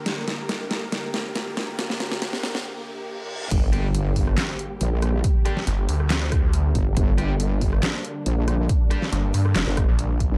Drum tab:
CC |----------------|----------------|x---------------|----------------|
HH |x-x-x-x-x-x-x-x-|x-x-x-x---------|x-x-x-o-x-x-x-x-|x-x-x-o-x-x-x-x-|
CP |----------------|----------------|--------x-------|--------x-------|
SD |o-o-o-o-o-o-o-o-|oooooooo--------|--r----ro-----r-|--ro---ro-r-----|
BD |----------------|----------------|o-----o---------|o---------o---o-|

CC |----------------|----------------|
HH |x-x-x-o-x-x-x-x-|x-x-x-o-x-x-x-x-|
CP |--------x-------|--------x-------|
SD |--r----ro-----r-|--ro---ro-r-----|
BD |o-----o---------|o---------o---o-|